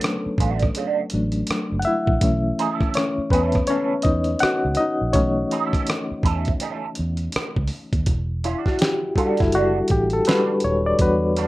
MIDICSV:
0, 0, Header, 1, 7, 480
1, 0, Start_track
1, 0, Tempo, 731707
1, 1452, Time_signature, 4, 2, 24, 8
1, 7527, End_track
2, 0, Start_track
2, 0, Title_t, "Reed electric piano"
2, 0, Program_c, 0, 4
2, 0, Control_c, 0, 64, 127
2, 0, Note_on_c, 0, 54, 52
2, 0, Note_on_c, 0, 57, 60
2, 0, Note_on_c, 0, 59, 67
2, 0, Note_on_c, 0, 61, 65
2, 0, Note_on_c, 0, 62, 56
2, 0, Note_on_c, 0, 69, 75
2, 0, Note_on_c, 0, 71, 90
2, 0, Note_on_c, 0, 73, 87
2, 0, Note_on_c, 0, 74, 97
2, 466, Note_off_c, 0, 69, 0
2, 473, Note_off_c, 0, 57, 0
2, 733, Note_off_c, 0, 54, 0
2, 739, Note_off_c, 0, 62, 0
2, 741, Note_on_c, 0, 54, 46
2, 744, Note_on_c, 0, 57, 44
2, 747, Note_on_c, 0, 62, 50
2, 953, Note_off_c, 0, 54, 0
2, 955, Note_off_c, 0, 57, 0
2, 956, Note_off_c, 0, 62, 0
2, 1177, Note_on_c, 0, 78, 70
2, 1213, Note_off_c, 0, 78, 0
2, 1213, Note_on_c, 0, 76, 101
2, 1229, Note_on_c, 0, 64, 75
2, 1460, Note_on_c, 0, 52, 52
2, 1461, Control_c, 0, 64, 0
2, 1462, Note_on_c, 0, 57, 47
2, 1463, Note_off_c, 0, 59, 0
2, 1463, Note_off_c, 0, 74, 0
2, 1466, Note_off_c, 0, 73, 0
2, 1467, Note_off_c, 0, 61, 0
2, 1467, Note_off_c, 0, 71, 0
2, 1468, Note_on_c, 0, 61, 59
2, 1566, Control_c, 0, 64, 127
2, 1666, Note_off_c, 0, 76, 0
2, 1674, Note_off_c, 0, 64, 0
2, 1794, Note_off_c, 0, 52, 0
2, 1796, Note_off_c, 0, 57, 0
2, 1799, Note_off_c, 0, 61, 0
2, 1937, Note_on_c, 0, 73, 79
2, 1952, Note_on_c, 0, 61, 62
2, 2165, Note_off_c, 0, 61, 0
2, 2175, Note_on_c, 0, 71, 83
2, 2181, Note_off_c, 0, 73, 0
2, 2191, Note_on_c, 0, 59, 59
2, 2405, Note_off_c, 0, 59, 0
2, 2411, Note_on_c, 0, 73, 85
2, 2420, Note_off_c, 0, 71, 0
2, 2428, Note_on_c, 0, 61, 73
2, 2643, Note_off_c, 0, 61, 0
2, 2646, Note_on_c, 0, 75, 83
2, 2658, Note_off_c, 0, 73, 0
2, 2666, Note_on_c, 0, 63, 67
2, 2882, Note_off_c, 0, 63, 0
2, 2889, Note_on_c, 0, 78, 104
2, 2896, Note_off_c, 0, 75, 0
2, 2907, Note_on_c, 0, 66, 80
2, 3123, Note_off_c, 0, 66, 0
2, 3130, Note_on_c, 0, 75, 87
2, 3137, Note_off_c, 0, 78, 0
2, 3150, Note_on_c, 0, 63, 65
2, 3364, Note_off_c, 0, 63, 0
2, 3366, Note_on_c, 0, 73, 78
2, 3376, Note_on_c, 0, 52, 50
2, 3378, Note_off_c, 0, 75, 0
2, 3380, Note_on_c, 0, 57, 48
2, 3384, Note_on_c, 0, 61, 62
2, 3712, Note_off_c, 0, 52, 0
2, 3714, Note_off_c, 0, 57, 0
2, 4302, Note_off_c, 0, 73, 0
2, 4312, Note_off_c, 0, 61, 0
2, 5300, Control_c, 0, 64, 0
2, 5412, Control_c, 0, 64, 127
2, 5545, Note_on_c, 0, 64, 65
2, 5688, Note_off_c, 0, 64, 0
2, 5691, Note_on_c, 0, 66, 69
2, 5731, Note_off_c, 0, 66, 0
2, 5783, Note_on_c, 0, 67, 77
2, 6015, Note_on_c, 0, 55, 50
2, 6019, Note_on_c, 0, 62, 47
2, 6021, Note_on_c, 0, 69, 79
2, 6022, Note_on_c, 0, 66, 57
2, 6024, Note_off_c, 0, 67, 0
2, 6166, Note_off_c, 0, 69, 0
2, 6167, Note_on_c, 0, 64, 73
2, 6256, Note_off_c, 0, 66, 0
2, 6259, Note_off_c, 0, 64, 0
2, 6264, Note_on_c, 0, 66, 83
2, 6503, Note_on_c, 0, 67, 78
2, 6505, Note_off_c, 0, 66, 0
2, 6565, Note_off_c, 0, 67, 0
2, 6647, Note_on_c, 0, 69, 80
2, 6707, Note_off_c, 0, 55, 0
2, 6709, Note_off_c, 0, 62, 0
2, 6739, Note_off_c, 0, 69, 0
2, 6739, Note_on_c, 0, 55, 45
2, 6741, Note_on_c, 0, 62, 40
2, 6742, Note_on_c, 0, 71, 92
2, 6744, Note_on_c, 0, 66, 50
2, 6952, Note_off_c, 0, 55, 0
2, 6953, Note_off_c, 0, 62, 0
2, 6955, Note_off_c, 0, 66, 0
2, 6983, Note_on_c, 0, 73, 87
2, 6984, Note_off_c, 0, 71, 0
2, 7113, Note_off_c, 0, 73, 0
2, 7127, Note_on_c, 0, 74, 92
2, 7219, Note_off_c, 0, 74, 0
2, 7222, Note_on_c, 0, 55, 49
2, 7225, Note_on_c, 0, 62, 46
2, 7226, Note_on_c, 0, 71, 86
2, 7231, Note_on_c, 0, 66, 59
2, 7527, Note_off_c, 0, 55, 0
2, 7527, Note_off_c, 0, 62, 0
2, 7527, Note_off_c, 0, 66, 0
2, 7527, Note_off_c, 0, 71, 0
2, 7527, End_track
3, 0, Start_track
3, 0, Title_t, "Clean electric guitar"
3, 0, Program_c, 1, 27
3, 263, Note_on_c, 1, 57, 74
3, 267, Note_on_c, 1, 62, 76
3, 273, Note_on_c, 1, 66, 80
3, 413, Note_off_c, 1, 57, 0
3, 415, Note_off_c, 1, 62, 0
3, 418, Note_off_c, 1, 66, 0
3, 502, Note_on_c, 1, 57, 73
3, 508, Note_on_c, 1, 62, 83
3, 513, Note_on_c, 1, 66, 92
3, 652, Note_off_c, 1, 57, 0
3, 655, Note_off_c, 1, 62, 0
3, 658, Note_off_c, 1, 66, 0
3, 1700, Note_on_c, 1, 60, 71
3, 1706, Note_on_c, 1, 63, 80
3, 1711, Note_on_c, 1, 68, 84
3, 1792, Note_off_c, 1, 60, 0
3, 1792, Note_on_c, 1, 61, 71
3, 1798, Note_off_c, 1, 63, 0
3, 1798, Note_on_c, 1, 64, 80
3, 1803, Note_off_c, 1, 68, 0
3, 1803, Note_on_c, 1, 69, 84
3, 1921, Note_off_c, 1, 61, 0
3, 1924, Note_off_c, 1, 64, 0
3, 1926, Note_off_c, 1, 69, 0
3, 2181, Note_on_c, 1, 61, 84
3, 2188, Note_on_c, 1, 64, 84
3, 2190, Note_on_c, 1, 69, 90
3, 2332, Note_off_c, 1, 61, 0
3, 2335, Note_off_c, 1, 64, 0
3, 2336, Note_off_c, 1, 69, 0
3, 2421, Note_on_c, 1, 61, 78
3, 2426, Note_on_c, 1, 64, 89
3, 2430, Note_on_c, 1, 69, 86
3, 2572, Note_off_c, 1, 61, 0
3, 2574, Note_off_c, 1, 64, 0
3, 2576, Note_off_c, 1, 69, 0
3, 3621, Note_on_c, 1, 60, 71
3, 3627, Note_on_c, 1, 63, 74
3, 3630, Note_on_c, 1, 68, 78
3, 3713, Note_off_c, 1, 60, 0
3, 3713, Note_on_c, 1, 61, 71
3, 3718, Note_off_c, 1, 63, 0
3, 3718, Note_on_c, 1, 64, 74
3, 3722, Note_off_c, 1, 68, 0
3, 3722, Note_on_c, 1, 69, 78
3, 3841, Note_off_c, 1, 61, 0
3, 3844, Note_off_c, 1, 64, 0
3, 3846, Note_off_c, 1, 69, 0
3, 4098, Note_on_c, 1, 61, 73
3, 4103, Note_on_c, 1, 64, 87
3, 4108, Note_on_c, 1, 69, 83
3, 4250, Note_off_c, 1, 61, 0
3, 4253, Note_off_c, 1, 64, 0
3, 4255, Note_off_c, 1, 69, 0
3, 4338, Note_on_c, 1, 61, 84
3, 4344, Note_on_c, 1, 64, 77
3, 4348, Note_on_c, 1, 69, 91
3, 4490, Note_off_c, 1, 61, 0
3, 4493, Note_off_c, 1, 64, 0
3, 4495, Note_off_c, 1, 69, 0
3, 5538, Note_on_c, 1, 54, 69
3, 5543, Note_on_c, 1, 61, 80
3, 5547, Note_on_c, 1, 65, 74
3, 5630, Note_off_c, 1, 54, 0
3, 5630, Note_on_c, 1, 55, 69
3, 5635, Note_off_c, 1, 61, 0
3, 5635, Note_on_c, 1, 62, 80
3, 5639, Note_off_c, 1, 65, 0
3, 5639, Note_on_c, 1, 66, 74
3, 5759, Note_off_c, 1, 55, 0
3, 5762, Note_off_c, 1, 62, 0
3, 5764, Note_off_c, 1, 66, 0
3, 6017, Note_on_c, 1, 55, 75
3, 6025, Note_on_c, 1, 62, 75
3, 6027, Note_on_c, 1, 66, 77
3, 6170, Note_off_c, 1, 55, 0
3, 6174, Note_off_c, 1, 62, 0
3, 6175, Note_off_c, 1, 66, 0
3, 6258, Note_on_c, 1, 55, 72
3, 6263, Note_on_c, 1, 62, 80
3, 6267, Note_on_c, 1, 66, 80
3, 6410, Note_off_c, 1, 55, 0
3, 6413, Note_off_c, 1, 62, 0
3, 6415, Note_off_c, 1, 66, 0
3, 6738, Note_on_c, 1, 55, 69
3, 6743, Note_on_c, 1, 62, 68
3, 6747, Note_on_c, 1, 66, 72
3, 6890, Note_off_c, 1, 55, 0
3, 6893, Note_off_c, 1, 62, 0
3, 6895, Note_off_c, 1, 66, 0
3, 7459, Note_on_c, 1, 55, 76
3, 7465, Note_on_c, 1, 62, 87
3, 7469, Note_on_c, 1, 66, 84
3, 7527, Note_off_c, 1, 55, 0
3, 7527, Note_off_c, 1, 62, 0
3, 7527, Note_off_c, 1, 66, 0
3, 7527, End_track
4, 0, Start_track
4, 0, Title_t, "Fingered electric bass"
4, 0, Program_c, 2, 33
4, 255, Note_on_c, 2, 33, 94
4, 442, Note_off_c, 2, 33, 0
4, 745, Note_on_c, 2, 33, 79
4, 928, Note_off_c, 2, 33, 0
4, 1129, Note_on_c, 2, 30, 81
4, 1199, Note_off_c, 2, 30, 0
4, 1366, Note_on_c, 2, 34, 89
4, 1437, Note_off_c, 2, 34, 0
4, 1458, Note_on_c, 2, 35, 89
4, 1645, Note_off_c, 2, 35, 0
4, 2174, Note_on_c, 2, 40, 80
4, 2362, Note_off_c, 2, 40, 0
4, 2661, Note_on_c, 2, 40, 90
4, 2846, Note_off_c, 2, 40, 0
4, 3050, Note_on_c, 2, 37, 83
4, 3119, Note_off_c, 2, 37, 0
4, 3290, Note_on_c, 2, 34, 82
4, 3377, Note_off_c, 2, 34, 0
4, 3377, Note_on_c, 2, 35, 91
4, 3564, Note_off_c, 2, 35, 0
4, 4094, Note_on_c, 2, 40, 78
4, 4282, Note_off_c, 2, 40, 0
4, 4587, Note_on_c, 2, 40, 76
4, 4770, Note_off_c, 2, 40, 0
4, 4968, Note_on_c, 2, 37, 85
4, 5038, Note_off_c, 2, 37, 0
4, 5206, Note_on_c, 2, 39, 79
4, 5277, Note_off_c, 2, 39, 0
4, 5297, Note_on_c, 2, 28, 93
4, 5598, Note_off_c, 2, 28, 0
4, 6174, Note_on_c, 2, 30, 83
4, 6431, Note_off_c, 2, 30, 0
4, 6501, Note_on_c, 2, 33, 85
4, 6686, Note_off_c, 2, 33, 0
4, 6983, Note_on_c, 2, 27, 86
4, 7167, Note_off_c, 2, 27, 0
4, 7216, Note_on_c, 2, 40, 87
4, 7518, Note_off_c, 2, 40, 0
4, 7527, End_track
5, 0, Start_track
5, 0, Title_t, "Muted clean electric guitar strokes"
5, 20, Note_on_c, 9, 29, 37
5, 85, Note_off_c, 9, 29, 0
5, 1942, Note_on_c, 9, 29, 34
5, 2008, Note_off_c, 9, 29, 0
5, 3862, Note_on_c, 9, 29, 42
5, 3928, Note_off_c, 9, 29, 0
5, 7527, End_track
6, 0, Start_track
6, 0, Title_t, "Muted fingered electric bass strokes"
6, 172, Note_on_c, 9, 29, 41
6, 238, Note_off_c, 9, 29, 0
6, 983, Note_on_c, 9, 29, 40
6, 1048, Note_off_c, 9, 29, 0
6, 2087, Note_on_c, 9, 29, 45
6, 2153, Note_off_c, 9, 29, 0
6, 2904, Note_on_c, 9, 29, 41
6, 2970, Note_off_c, 9, 29, 0
6, 4012, Note_on_c, 9, 29, 44
6, 4078, Note_off_c, 9, 29, 0
6, 4827, Note_on_c, 9, 29, 42
6, 4892, Note_off_c, 9, 29, 0
6, 5685, Note_on_c, 9, 29, 42
6, 5751, Note_off_c, 9, 29, 0
6, 6012, Note_on_c, 9, 29, 43
6, 6078, Note_off_c, 9, 29, 0
6, 7527, End_track
7, 0, Start_track
7, 0, Title_t, "Drums"
7, 8, Note_on_c, 9, 42, 72
7, 28, Note_on_c, 9, 37, 112
7, 74, Note_off_c, 9, 42, 0
7, 94, Note_off_c, 9, 37, 0
7, 249, Note_on_c, 9, 36, 82
7, 265, Note_on_c, 9, 42, 60
7, 315, Note_off_c, 9, 36, 0
7, 331, Note_off_c, 9, 42, 0
7, 390, Note_on_c, 9, 42, 32
7, 410, Note_on_c, 9, 36, 86
7, 413, Note_on_c, 9, 37, 34
7, 456, Note_off_c, 9, 42, 0
7, 476, Note_off_c, 9, 36, 0
7, 479, Note_off_c, 9, 37, 0
7, 490, Note_on_c, 9, 42, 80
7, 556, Note_off_c, 9, 42, 0
7, 720, Note_on_c, 9, 42, 68
7, 786, Note_off_c, 9, 42, 0
7, 865, Note_on_c, 9, 42, 35
7, 931, Note_off_c, 9, 42, 0
7, 963, Note_on_c, 9, 42, 76
7, 988, Note_on_c, 9, 37, 106
7, 1028, Note_off_c, 9, 42, 0
7, 1053, Note_off_c, 9, 37, 0
7, 1195, Note_on_c, 9, 42, 61
7, 1261, Note_off_c, 9, 42, 0
7, 1360, Note_on_c, 9, 36, 92
7, 1426, Note_off_c, 9, 36, 0
7, 1451, Note_on_c, 9, 42, 82
7, 1452, Note_on_c, 9, 36, 103
7, 1517, Note_off_c, 9, 42, 0
7, 1518, Note_off_c, 9, 36, 0
7, 1700, Note_on_c, 9, 42, 64
7, 1765, Note_off_c, 9, 42, 0
7, 1841, Note_on_c, 9, 36, 88
7, 1847, Note_on_c, 9, 37, 35
7, 1906, Note_off_c, 9, 36, 0
7, 1913, Note_off_c, 9, 37, 0
7, 1928, Note_on_c, 9, 42, 77
7, 1948, Note_on_c, 9, 37, 103
7, 1994, Note_off_c, 9, 42, 0
7, 2014, Note_off_c, 9, 37, 0
7, 2168, Note_on_c, 9, 36, 79
7, 2184, Note_on_c, 9, 42, 57
7, 2233, Note_off_c, 9, 36, 0
7, 2250, Note_off_c, 9, 42, 0
7, 2310, Note_on_c, 9, 42, 33
7, 2329, Note_on_c, 9, 36, 83
7, 2333, Note_on_c, 9, 37, 35
7, 2376, Note_off_c, 9, 42, 0
7, 2395, Note_off_c, 9, 36, 0
7, 2399, Note_off_c, 9, 37, 0
7, 2407, Note_on_c, 9, 42, 79
7, 2472, Note_off_c, 9, 42, 0
7, 2638, Note_on_c, 9, 42, 67
7, 2655, Note_on_c, 9, 36, 90
7, 2704, Note_off_c, 9, 42, 0
7, 2721, Note_off_c, 9, 36, 0
7, 2783, Note_on_c, 9, 42, 34
7, 2848, Note_off_c, 9, 42, 0
7, 2882, Note_on_c, 9, 42, 77
7, 2907, Note_on_c, 9, 37, 110
7, 2947, Note_off_c, 9, 42, 0
7, 2972, Note_off_c, 9, 37, 0
7, 3114, Note_on_c, 9, 42, 61
7, 3180, Note_off_c, 9, 42, 0
7, 3368, Note_on_c, 9, 42, 80
7, 3371, Note_on_c, 9, 36, 102
7, 3434, Note_off_c, 9, 42, 0
7, 3437, Note_off_c, 9, 36, 0
7, 3617, Note_on_c, 9, 42, 64
7, 3682, Note_off_c, 9, 42, 0
7, 3760, Note_on_c, 9, 36, 90
7, 3766, Note_on_c, 9, 37, 35
7, 3769, Note_on_c, 9, 42, 34
7, 3826, Note_off_c, 9, 36, 0
7, 3832, Note_off_c, 9, 37, 0
7, 3834, Note_off_c, 9, 42, 0
7, 3848, Note_on_c, 9, 42, 72
7, 3868, Note_on_c, 9, 37, 104
7, 3914, Note_off_c, 9, 42, 0
7, 3934, Note_off_c, 9, 37, 0
7, 4088, Note_on_c, 9, 36, 81
7, 4104, Note_on_c, 9, 42, 61
7, 4154, Note_off_c, 9, 36, 0
7, 4169, Note_off_c, 9, 42, 0
7, 4231, Note_on_c, 9, 42, 31
7, 4250, Note_on_c, 9, 36, 85
7, 4297, Note_off_c, 9, 42, 0
7, 4316, Note_off_c, 9, 36, 0
7, 4329, Note_on_c, 9, 42, 77
7, 4395, Note_off_c, 9, 42, 0
7, 4561, Note_on_c, 9, 42, 66
7, 4627, Note_off_c, 9, 42, 0
7, 4704, Note_on_c, 9, 42, 33
7, 4770, Note_off_c, 9, 42, 0
7, 4804, Note_on_c, 9, 42, 73
7, 4829, Note_on_c, 9, 37, 115
7, 4870, Note_off_c, 9, 42, 0
7, 4895, Note_off_c, 9, 37, 0
7, 4962, Note_on_c, 9, 36, 85
7, 5028, Note_off_c, 9, 36, 0
7, 5035, Note_on_c, 9, 46, 43
7, 5101, Note_off_c, 9, 46, 0
7, 5200, Note_on_c, 9, 36, 98
7, 5201, Note_on_c, 9, 42, 37
7, 5265, Note_off_c, 9, 36, 0
7, 5266, Note_off_c, 9, 42, 0
7, 5289, Note_on_c, 9, 42, 76
7, 5292, Note_on_c, 9, 36, 97
7, 5354, Note_off_c, 9, 42, 0
7, 5357, Note_off_c, 9, 36, 0
7, 5538, Note_on_c, 9, 42, 63
7, 5603, Note_off_c, 9, 42, 0
7, 5680, Note_on_c, 9, 36, 82
7, 5686, Note_on_c, 9, 38, 33
7, 5745, Note_off_c, 9, 36, 0
7, 5751, Note_off_c, 9, 38, 0
7, 5765, Note_on_c, 9, 42, 70
7, 5785, Note_on_c, 9, 38, 112
7, 5830, Note_off_c, 9, 42, 0
7, 5851, Note_off_c, 9, 38, 0
7, 6006, Note_on_c, 9, 36, 76
7, 6021, Note_on_c, 9, 42, 59
7, 6072, Note_off_c, 9, 36, 0
7, 6086, Note_off_c, 9, 42, 0
7, 6149, Note_on_c, 9, 42, 33
7, 6169, Note_on_c, 9, 36, 91
7, 6172, Note_on_c, 9, 38, 34
7, 6214, Note_off_c, 9, 42, 0
7, 6234, Note_off_c, 9, 36, 0
7, 6237, Note_off_c, 9, 38, 0
7, 6247, Note_on_c, 9, 42, 75
7, 6313, Note_off_c, 9, 42, 0
7, 6480, Note_on_c, 9, 42, 69
7, 6496, Note_on_c, 9, 36, 93
7, 6545, Note_off_c, 9, 42, 0
7, 6561, Note_off_c, 9, 36, 0
7, 6625, Note_on_c, 9, 42, 34
7, 6691, Note_off_c, 9, 42, 0
7, 6724, Note_on_c, 9, 42, 72
7, 6749, Note_on_c, 9, 38, 108
7, 6789, Note_off_c, 9, 42, 0
7, 6814, Note_off_c, 9, 38, 0
7, 6955, Note_on_c, 9, 42, 60
7, 7021, Note_off_c, 9, 42, 0
7, 7208, Note_on_c, 9, 42, 79
7, 7210, Note_on_c, 9, 36, 108
7, 7273, Note_off_c, 9, 42, 0
7, 7276, Note_off_c, 9, 36, 0
7, 7456, Note_on_c, 9, 42, 64
7, 7521, Note_off_c, 9, 42, 0
7, 7527, End_track
0, 0, End_of_file